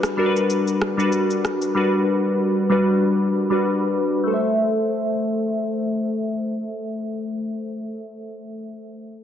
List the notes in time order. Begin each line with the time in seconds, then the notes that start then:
Already playing: G3 D4 F#4 B4
0.03 cross-stick, shaker
0.17 G3 D4 F#4 A#4
0.26 B4
0.37 shaker
0.50 shaker
0.68 shaker
0.82 cross-stick
0.97 G3 D4 F#4 B4, shaker
1.12 shaker
1.31 shaker
1.45 cross-stick, shaker
1.62 shaker
1.75 G3 D4 F#4 B4
2.70 G3 D4 F#4 B4
3.50 G3 D4 F#4 B4
4.24 A3 A4
4.30 C5 E5